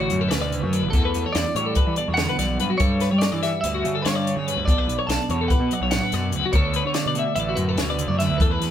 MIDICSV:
0, 0, Header, 1, 6, 480
1, 0, Start_track
1, 0, Tempo, 414651
1, 1085, Time_signature, 9, 3, 24, 8
1, 10079, End_track
2, 0, Start_track
2, 0, Title_t, "Clean electric guitar"
2, 0, Program_c, 0, 27
2, 0, Note_on_c, 0, 73, 77
2, 330, Note_on_c, 0, 71, 77
2, 370, Note_off_c, 0, 73, 0
2, 1043, Note_off_c, 0, 71, 0
2, 1047, Note_on_c, 0, 69, 83
2, 1534, Note_on_c, 0, 74, 75
2, 1561, Note_off_c, 0, 69, 0
2, 2472, Note_off_c, 0, 74, 0
2, 2476, Note_on_c, 0, 78, 88
2, 3175, Note_off_c, 0, 78, 0
2, 3213, Note_on_c, 0, 73, 84
2, 3682, Note_off_c, 0, 73, 0
2, 3686, Note_on_c, 0, 74, 73
2, 4172, Note_off_c, 0, 74, 0
2, 4177, Note_on_c, 0, 76, 80
2, 4653, Note_off_c, 0, 76, 0
2, 4657, Note_on_c, 0, 73, 81
2, 5345, Note_off_c, 0, 73, 0
2, 5386, Note_on_c, 0, 74, 87
2, 5864, Note_off_c, 0, 74, 0
2, 5869, Note_on_c, 0, 81, 82
2, 6341, Note_off_c, 0, 81, 0
2, 6346, Note_on_c, 0, 78, 82
2, 6825, Note_off_c, 0, 78, 0
2, 6839, Note_on_c, 0, 78, 92
2, 7551, Note_off_c, 0, 78, 0
2, 7555, Note_on_c, 0, 73, 84
2, 8034, Note_off_c, 0, 73, 0
2, 8038, Note_on_c, 0, 74, 71
2, 8510, Note_off_c, 0, 74, 0
2, 8514, Note_on_c, 0, 76, 81
2, 8745, Note_on_c, 0, 71, 76
2, 8765, Note_off_c, 0, 76, 0
2, 9354, Note_on_c, 0, 74, 75
2, 9371, Note_off_c, 0, 71, 0
2, 9473, Note_off_c, 0, 74, 0
2, 9477, Note_on_c, 0, 76, 73
2, 9702, Note_on_c, 0, 71, 74
2, 9726, Note_off_c, 0, 76, 0
2, 10079, Note_off_c, 0, 71, 0
2, 10079, End_track
3, 0, Start_track
3, 0, Title_t, "Clean electric guitar"
3, 0, Program_c, 1, 27
3, 0, Note_on_c, 1, 66, 62
3, 244, Note_off_c, 1, 66, 0
3, 244, Note_on_c, 1, 69, 64
3, 352, Note_on_c, 1, 73, 76
3, 364, Note_off_c, 1, 69, 0
3, 476, Note_off_c, 1, 73, 0
3, 480, Note_on_c, 1, 74, 64
3, 720, Note_off_c, 1, 74, 0
3, 720, Note_on_c, 1, 73, 61
3, 853, Note_off_c, 1, 73, 0
3, 853, Note_on_c, 1, 71, 66
3, 1094, Note_off_c, 1, 71, 0
3, 1094, Note_on_c, 1, 69, 77
3, 1209, Note_off_c, 1, 69, 0
3, 1219, Note_on_c, 1, 71, 55
3, 1452, Note_off_c, 1, 71, 0
3, 1460, Note_on_c, 1, 73, 62
3, 1564, Note_off_c, 1, 73, 0
3, 1564, Note_on_c, 1, 74, 72
3, 1804, Note_off_c, 1, 74, 0
3, 1809, Note_on_c, 1, 73, 61
3, 1923, Note_on_c, 1, 69, 57
3, 1927, Note_off_c, 1, 73, 0
3, 2044, Note_off_c, 1, 69, 0
3, 2044, Note_on_c, 1, 71, 70
3, 2284, Note_off_c, 1, 71, 0
3, 2288, Note_on_c, 1, 74, 69
3, 2410, Note_off_c, 1, 74, 0
3, 2410, Note_on_c, 1, 73, 66
3, 2648, Note_off_c, 1, 73, 0
3, 2655, Note_on_c, 1, 71, 59
3, 2761, Note_off_c, 1, 71, 0
3, 2766, Note_on_c, 1, 74, 66
3, 3006, Note_off_c, 1, 74, 0
3, 3014, Note_on_c, 1, 71, 66
3, 3127, Note_on_c, 1, 66, 59
3, 3130, Note_off_c, 1, 71, 0
3, 3242, Note_off_c, 1, 66, 0
3, 3242, Note_on_c, 1, 69, 82
3, 3484, Note_off_c, 1, 69, 0
3, 3489, Note_on_c, 1, 71, 66
3, 3600, Note_off_c, 1, 71, 0
3, 3605, Note_on_c, 1, 73, 59
3, 3843, Note_off_c, 1, 73, 0
3, 3843, Note_on_c, 1, 74, 65
3, 3962, Note_off_c, 1, 74, 0
3, 3967, Note_on_c, 1, 76, 66
3, 4212, Note_off_c, 1, 76, 0
3, 4212, Note_on_c, 1, 74, 71
3, 4329, Note_off_c, 1, 74, 0
3, 4336, Note_on_c, 1, 66, 64
3, 4571, Note_off_c, 1, 66, 0
3, 4573, Note_on_c, 1, 69, 65
3, 4687, Note_off_c, 1, 69, 0
3, 4687, Note_on_c, 1, 73, 73
3, 4810, Note_off_c, 1, 73, 0
3, 4810, Note_on_c, 1, 74, 60
3, 5049, Note_off_c, 1, 74, 0
3, 5049, Note_on_c, 1, 73, 59
3, 5172, Note_off_c, 1, 73, 0
3, 5172, Note_on_c, 1, 71, 68
3, 5411, Note_off_c, 1, 71, 0
3, 5411, Note_on_c, 1, 69, 81
3, 5536, Note_off_c, 1, 69, 0
3, 5536, Note_on_c, 1, 71, 61
3, 5769, Note_off_c, 1, 71, 0
3, 5773, Note_on_c, 1, 73, 63
3, 5890, Note_off_c, 1, 73, 0
3, 5890, Note_on_c, 1, 74, 77
3, 6128, Note_off_c, 1, 74, 0
3, 6144, Note_on_c, 1, 73, 61
3, 6254, Note_off_c, 1, 73, 0
3, 6265, Note_on_c, 1, 69, 62
3, 6375, Note_off_c, 1, 69, 0
3, 6378, Note_on_c, 1, 71, 70
3, 6632, Note_off_c, 1, 71, 0
3, 6632, Note_on_c, 1, 74, 68
3, 6738, Note_off_c, 1, 74, 0
3, 6745, Note_on_c, 1, 73, 65
3, 6984, Note_off_c, 1, 73, 0
3, 6984, Note_on_c, 1, 71, 60
3, 7104, Note_off_c, 1, 71, 0
3, 7104, Note_on_c, 1, 74, 67
3, 7357, Note_off_c, 1, 74, 0
3, 7357, Note_on_c, 1, 71, 67
3, 7460, Note_off_c, 1, 71, 0
3, 7474, Note_on_c, 1, 66, 57
3, 7586, Note_off_c, 1, 66, 0
3, 7586, Note_on_c, 1, 69, 81
3, 7814, Note_off_c, 1, 69, 0
3, 7827, Note_on_c, 1, 71, 71
3, 7935, Note_off_c, 1, 71, 0
3, 7952, Note_on_c, 1, 73, 61
3, 8177, Note_off_c, 1, 73, 0
3, 8191, Note_on_c, 1, 74, 65
3, 8297, Note_off_c, 1, 74, 0
3, 8321, Note_on_c, 1, 76, 67
3, 8541, Note_off_c, 1, 76, 0
3, 8563, Note_on_c, 1, 74, 62
3, 8662, Note_off_c, 1, 74, 0
3, 8667, Note_on_c, 1, 66, 60
3, 8898, Note_off_c, 1, 66, 0
3, 8898, Note_on_c, 1, 69, 67
3, 9010, Note_off_c, 1, 69, 0
3, 9020, Note_on_c, 1, 73, 76
3, 9131, Note_off_c, 1, 73, 0
3, 9145, Note_on_c, 1, 74, 63
3, 9380, Note_off_c, 1, 74, 0
3, 9380, Note_on_c, 1, 73, 65
3, 9504, Note_off_c, 1, 73, 0
3, 9504, Note_on_c, 1, 71, 68
3, 9733, Note_off_c, 1, 71, 0
3, 9744, Note_on_c, 1, 69, 81
3, 9854, Note_off_c, 1, 69, 0
3, 9854, Note_on_c, 1, 71, 58
3, 10079, Note_off_c, 1, 71, 0
3, 10079, End_track
4, 0, Start_track
4, 0, Title_t, "Clean electric guitar"
4, 0, Program_c, 2, 27
4, 0, Note_on_c, 2, 50, 66
4, 0, Note_on_c, 2, 57, 57
4, 0, Note_on_c, 2, 62, 54
4, 0, Note_on_c, 2, 66, 56
4, 0, Note_on_c, 2, 71, 56
4, 135, Note_on_c, 2, 45, 54
4, 136, Note_off_c, 2, 62, 0
4, 141, Note_on_c, 2, 64, 53
4, 362, Note_off_c, 2, 45, 0
4, 366, Note_on_c, 2, 47, 55
4, 601, Note_off_c, 2, 47, 0
4, 605, Note_on_c, 2, 49, 55
4, 830, Note_off_c, 2, 50, 0
4, 844, Note_on_c, 2, 50, 59
4, 845, Note_off_c, 2, 49, 0
4, 1065, Note_off_c, 2, 64, 0
4, 1080, Note_off_c, 2, 50, 0
4, 1084, Note_on_c, 2, 52, 66
4, 1086, Note_off_c, 2, 66, 0
4, 1090, Note_on_c, 2, 66, 55
4, 1817, Note_off_c, 2, 57, 0
4, 1822, Note_on_c, 2, 55, 55
4, 1823, Note_off_c, 2, 66, 0
4, 1827, Note_on_c, 2, 66, 53
4, 2061, Note_off_c, 2, 71, 0
4, 2066, Note_on_c, 2, 69, 56
4, 2292, Note_on_c, 2, 47, 57
4, 2298, Note_on_c, 2, 62, 52
4, 2526, Note_off_c, 2, 52, 0
4, 2531, Note_on_c, 2, 50, 54
4, 2763, Note_off_c, 2, 50, 0
4, 2767, Note_on_c, 2, 52, 59
4, 3007, Note_off_c, 2, 52, 0
4, 3019, Note_on_c, 2, 54, 55
4, 3221, Note_off_c, 2, 47, 0
4, 3244, Note_on_c, 2, 43, 64
4, 3245, Note_off_c, 2, 69, 0
4, 3250, Note_on_c, 2, 71, 58
4, 3253, Note_off_c, 2, 54, 0
4, 3279, Note_off_c, 2, 66, 0
4, 3954, Note_off_c, 2, 55, 0
4, 3967, Note_on_c, 2, 55, 56
4, 3978, Note_on_c, 2, 66, 48
4, 4215, Note_off_c, 2, 71, 0
4, 4220, Note_on_c, 2, 71, 54
4, 4449, Note_on_c, 2, 50, 51
4, 4451, Note_off_c, 2, 62, 0
4, 4456, Note_on_c, 2, 62, 48
4, 4688, Note_off_c, 2, 66, 0
4, 4693, Note_on_c, 2, 66, 51
4, 4938, Note_off_c, 2, 62, 0
4, 4942, Note_on_c, 2, 62, 54
4, 5161, Note_off_c, 2, 43, 0
4, 5175, Note_on_c, 2, 43, 67
4, 5176, Note_off_c, 2, 71, 0
4, 5180, Note_on_c, 2, 71, 60
4, 5407, Note_off_c, 2, 50, 0
4, 5407, Note_off_c, 2, 55, 0
4, 5410, Note_off_c, 2, 43, 0
4, 5417, Note_on_c, 2, 47, 62
4, 5424, Note_off_c, 2, 71, 0
4, 5429, Note_on_c, 2, 69, 58
4, 6139, Note_on_c, 2, 59, 57
4, 6140, Note_off_c, 2, 66, 0
4, 6145, Note_on_c, 2, 66, 50
4, 6363, Note_off_c, 2, 69, 0
4, 6368, Note_on_c, 2, 67, 55
4, 6490, Note_off_c, 2, 67, 0
4, 6490, Note_on_c, 2, 69, 53
4, 6618, Note_on_c, 2, 54, 56
4, 6622, Note_off_c, 2, 62, 0
4, 6627, Note_on_c, 2, 62, 50
4, 6844, Note_off_c, 2, 47, 0
4, 6848, Note_on_c, 2, 45, 54
4, 7076, Note_off_c, 2, 45, 0
4, 7081, Note_on_c, 2, 47, 59
4, 7307, Note_off_c, 2, 47, 0
4, 7312, Note_on_c, 2, 49, 62
4, 7528, Note_off_c, 2, 54, 0
4, 7533, Note_on_c, 2, 50, 65
4, 7539, Note_off_c, 2, 69, 0
4, 7544, Note_on_c, 2, 71, 62
4, 7557, Note_off_c, 2, 49, 0
4, 8267, Note_off_c, 2, 59, 0
4, 8271, Note_on_c, 2, 57, 60
4, 8276, Note_off_c, 2, 66, 0
4, 8281, Note_on_c, 2, 66, 54
4, 8510, Note_off_c, 2, 71, 0
4, 8514, Note_on_c, 2, 71, 58
4, 8745, Note_on_c, 2, 45, 57
4, 8748, Note_off_c, 2, 62, 0
4, 8753, Note_on_c, 2, 64, 54
4, 8991, Note_off_c, 2, 45, 0
4, 8996, Note_on_c, 2, 47, 53
4, 9233, Note_off_c, 2, 47, 0
4, 9238, Note_on_c, 2, 49, 58
4, 9466, Note_off_c, 2, 50, 0
4, 9479, Note_off_c, 2, 49, 0
4, 9483, Note_on_c, 2, 50, 61
4, 9692, Note_off_c, 2, 66, 0
4, 9715, Note_off_c, 2, 50, 0
4, 9720, Note_on_c, 2, 52, 71
4, 9725, Note_off_c, 2, 71, 0
4, 9730, Note_on_c, 2, 69, 57
4, 10079, Note_off_c, 2, 52, 0
4, 10079, Note_off_c, 2, 57, 0
4, 10079, Note_off_c, 2, 64, 0
4, 10079, Note_off_c, 2, 69, 0
4, 10079, End_track
5, 0, Start_track
5, 0, Title_t, "Picked electric bass"
5, 0, Program_c, 3, 34
5, 126, Note_on_c, 3, 42, 76
5, 339, Note_off_c, 3, 42, 0
5, 370, Note_on_c, 3, 38, 87
5, 689, Note_off_c, 3, 38, 0
5, 735, Note_on_c, 3, 42, 83
5, 945, Note_off_c, 3, 42, 0
5, 967, Note_on_c, 3, 33, 72
5, 1070, Note_off_c, 3, 33, 0
5, 1077, Note_on_c, 3, 40, 81
5, 1295, Note_off_c, 3, 40, 0
5, 1328, Note_on_c, 3, 40, 71
5, 1434, Note_off_c, 3, 40, 0
5, 1561, Note_on_c, 3, 40, 73
5, 1670, Note_off_c, 3, 40, 0
5, 1793, Note_on_c, 3, 45, 71
5, 2013, Note_off_c, 3, 45, 0
5, 2162, Note_on_c, 3, 52, 72
5, 2271, Note_off_c, 3, 52, 0
5, 2409, Note_on_c, 3, 40, 72
5, 2622, Note_off_c, 3, 40, 0
5, 2760, Note_on_c, 3, 35, 80
5, 2977, Note_off_c, 3, 35, 0
5, 3009, Note_on_c, 3, 43, 72
5, 3115, Note_off_c, 3, 43, 0
5, 3245, Note_on_c, 3, 43, 87
5, 3567, Note_off_c, 3, 43, 0
5, 3612, Note_on_c, 3, 55, 71
5, 3716, Note_off_c, 3, 55, 0
5, 3851, Note_on_c, 3, 52, 64
5, 4063, Note_off_c, 3, 52, 0
5, 4211, Note_on_c, 3, 38, 76
5, 4423, Note_off_c, 3, 38, 0
5, 4462, Note_on_c, 3, 49, 83
5, 4669, Note_off_c, 3, 49, 0
5, 4694, Note_on_c, 3, 43, 87
5, 5012, Note_off_c, 3, 43, 0
5, 5056, Note_on_c, 3, 49, 76
5, 5265, Note_off_c, 3, 49, 0
5, 5288, Note_on_c, 3, 38, 79
5, 5394, Note_off_c, 3, 38, 0
5, 5409, Note_on_c, 3, 35, 83
5, 5622, Note_off_c, 3, 35, 0
5, 5644, Note_on_c, 3, 35, 77
5, 5752, Note_off_c, 3, 35, 0
5, 5883, Note_on_c, 3, 35, 74
5, 5991, Note_off_c, 3, 35, 0
5, 6125, Note_on_c, 3, 40, 75
5, 6339, Note_off_c, 3, 40, 0
5, 6480, Note_on_c, 3, 47, 76
5, 6589, Note_off_c, 3, 47, 0
5, 6725, Note_on_c, 3, 35, 72
5, 6939, Note_off_c, 3, 35, 0
5, 7097, Note_on_c, 3, 42, 80
5, 7305, Note_off_c, 3, 42, 0
5, 7335, Note_on_c, 3, 38, 74
5, 7437, Note_off_c, 3, 38, 0
5, 7566, Note_on_c, 3, 38, 91
5, 7885, Note_off_c, 3, 38, 0
5, 7931, Note_on_c, 3, 50, 69
5, 8034, Note_off_c, 3, 50, 0
5, 8171, Note_on_c, 3, 47, 72
5, 8381, Note_off_c, 3, 47, 0
5, 8525, Note_on_c, 3, 33, 83
5, 8738, Note_off_c, 3, 33, 0
5, 8761, Note_on_c, 3, 42, 85
5, 8975, Note_off_c, 3, 42, 0
5, 8999, Note_on_c, 3, 38, 86
5, 9321, Note_off_c, 3, 38, 0
5, 9354, Note_on_c, 3, 42, 81
5, 9571, Note_off_c, 3, 42, 0
5, 9595, Note_on_c, 3, 38, 77
5, 9705, Note_off_c, 3, 38, 0
5, 9728, Note_on_c, 3, 40, 84
5, 9939, Note_off_c, 3, 40, 0
5, 9955, Note_on_c, 3, 40, 68
5, 10064, Note_off_c, 3, 40, 0
5, 10079, End_track
6, 0, Start_track
6, 0, Title_t, "Drums"
6, 114, Note_on_c, 9, 42, 50
6, 229, Note_off_c, 9, 42, 0
6, 356, Note_on_c, 9, 42, 76
6, 364, Note_on_c, 9, 38, 97
6, 472, Note_off_c, 9, 42, 0
6, 480, Note_off_c, 9, 38, 0
6, 606, Note_on_c, 9, 42, 57
6, 722, Note_off_c, 9, 42, 0
6, 842, Note_on_c, 9, 42, 57
6, 958, Note_off_c, 9, 42, 0
6, 1078, Note_on_c, 9, 42, 65
6, 1082, Note_on_c, 9, 36, 86
6, 1194, Note_off_c, 9, 42, 0
6, 1198, Note_off_c, 9, 36, 0
6, 1321, Note_on_c, 9, 42, 48
6, 1437, Note_off_c, 9, 42, 0
6, 1560, Note_on_c, 9, 42, 66
6, 1568, Note_on_c, 9, 38, 100
6, 1676, Note_off_c, 9, 42, 0
6, 1684, Note_off_c, 9, 38, 0
6, 1802, Note_on_c, 9, 42, 51
6, 1918, Note_off_c, 9, 42, 0
6, 2029, Note_on_c, 9, 42, 67
6, 2041, Note_on_c, 9, 36, 91
6, 2144, Note_off_c, 9, 42, 0
6, 2156, Note_off_c, 9, 36, 0
6, 2271, Note_on_c, 9, 42, 48
6, 2386, Note_off_c, 9, 42, 0
6, 2513, Note_on_c, 9, 42, 65
6, 2522, Note_on_c, 9, 38, 94
6, 2629, Note_off_c, 9, 42, 0
6, 2637, Note_off_c, 9, 38, 0
6, 2765, Note_on_c, 9, 42, 53
6, 2773, Note_on_c, 9, 38, 30
6, 2881, Note_off_c, 9, 42, 0
6, 2889, Note_off_c, 9, 38, 0
6, 3005, Note_on_c, 9, 42, 52
6, 3121, Note_off_c, 9, 42, 0
6, 3238, Note_on_c, 9, 42, 72
6, 3245, Note_on_c, 9, 36, 94
6, 3354, Note_off_c, 9, 42, 0
6, 3360, Note_off_c, 9, 36, 0
6, 3476, Note_on_c, 9, 42, 52
6, 3484, Note_on_c, 9, 38, 29
6, 3592, Note_off_c, 9, 42, 0
6, 3600, Note_off_c, 9, 38, 0
6, 3719, Note_on_c, 9, 42, 74
6, 3727, Note_on_c, 9, 38, 96
6, 3834, Note_off_c, 9, 42, 0
6, 3843, Note_off_c, 9, 38, 0
6, 3969, Note_on_c, 9, 42, 55
6, 3977, Note_on_c, 9, 38, 27
6, 4085, Note_off_c, 9, 42, 0
6, 4093, Note_off_c, 9, 38, 0
6, 4210, Note_on_c, 9, 42, 76
6, 4326, Note_off_c, 9, 42, 0
6, 4456, Note_on_c, 9, 42, 52
6, 4572, Note_off_c, 9, 42, 0
6, 4693, Note_on_c, 9, 42, 72
6, 4701, Note_on_c, 9, 38, 88
6, 4809, Note_off_c, 9, 42, 0
6, 4817, Note_off_c, 9, 38, 0
6, 4944, Note_on_c, 9, 42, 57
6, 5060, Note_off_c, 9, 42, 0
6, 5184, Note_on_c, 9, 42, 53
6, 5300, Note_off_c, 9, 42, 0
6, 5414, Note_on_c, 9, 36, 93
6, 5422, Note_on_c, 9, 42, 67
6, 5530, Note_off_c, 9, 36, 0
6, 5538, Note_off_c, 9, 42, 0
6, 5664, Note_on_c, 9, 42, 53
6, 5780, Note_off_c, 9, 42, 0
6, 5897, Note_on_c, 9, 42, 73
6, 5905, Note_on_c, 9, 38, 95
6, 6013, Note_off_c, 9, 42, 0
6, 6021, Note_off_c, 9, 38, 0
6, 6130, Note_on_c, 9, 42, 47
6, 6246, Note_off_c, 9, 42, 0
6, 6369, Note_on_c, 9, 42, 63
6, 6371, Note_on_c, 9, 36, 89
6, 6485, Note_off_c, 9, 42, 0
6, 6486, Note_off_c, 9, 36, 0
6, 6609, Note_on_c, 9, 42, 51
6, 6724, Note_off_c, 9, 42, 0
6, 6842, Note_on_c, 9, 42, 70
6, 6850, Note_on_c, 9, 38, 97
6, 6957, Note_off_c, 9, 42, 0
6, 6965, Note_off_c, 9, 38, 0
6, 7084, Note_on_c, 9, 42, 51
6, 7092, Note_on_c, 9, 38, 29
6, 7200, Note_off_c, 9, 42, 0
6, 7208, Note_off_c, 9, 38, 0
6, 7319, Note_on_c, 9, 42, 50
6, 7435, Note_off_c, 9, 42, 0
6, 7556, Note_on_c, 9, 42, 65
6, 7564, Note_on_c, 9, 36, 89
6, 7672, Note_off_c, 9, 42, 0
6, 7680, Note_off_c, 9, 36, 0
6, 7797, Note_on_c, 9, 42, 51
6, 7913, Note_off_c, 9, 42, 0
6, 8034, Note_on_c, 9, 42, 79
6, 8042, Note_on_c, 9, 38, 98
6, 8150, Note_off_c, 9, 42, 0
6, 8158, Note_off_c, 9, 38, 0
6, 8277, Note_on_c, 9, 42, 52
6, 8393, Note_off_c, 9, 42, 0
6, 8516, Note_on_c, 9, 42, 68
6, 8632, Note_off_c, 9, 42, 0
6, 8758, Note_on_c, 9, 42, 51
6, 8874, Note_off_c, 9, 42, 0
6, 9000, Note_on_c, 9, 42, 76
6, 9008, Note_on_c, 9, 38, 99
6, 9116, Note_off_c, 9, 42, 0
6, 9124, Note_off_c, 9, 38, 0
6, 9245, Note_on_c, 9, 42, 56
6, 9361, Note_off_c, 9, 42, 0
6, 9491, Note_on_c, 9, 42, 55
6, 9499, Note_on_c, 9, 38, 31
6, 9606, Note_off_c, 9, 42, 0
6, 9615, Note_off_c, 9, 38, 0
6, 9725, Note_on_c, 9, 36, 96
6, 9729, Note_on_c, 9, 42, 68
6, 9841, Note_off_c, 9, 36, 0
6, 9844, Note_off_c, 9, 42, 0
6, 9973, Note_on_c, 9, 42, 52
6, 9981, Note_on_c, 9, 38, 29
6, 10079, Note_off_c, 9, 38, 0
6, 10079, Note_off_c, 9, 42, 0
6, 10079, End_track
0, 0, End_of_file